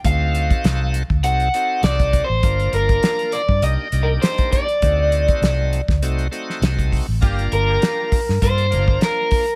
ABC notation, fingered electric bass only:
X:1
M:4/4
L:1/16
Q:"Swing 16ths" 1/4=100
K:Gm
V:1 name="Fingered electric bass" clef=bass
D,,4 C,,3 D,, C,,2 z2 C,,3 A,,, | G,,,2 G,,,2 z3 G,, C,, z C,,2 z4 | D,,4 C,,3 D,, C,,2 z2 C,,3 A,,, | G,,,2 G,,,2 z3 G,, G,,2 G,,,2 z4 |]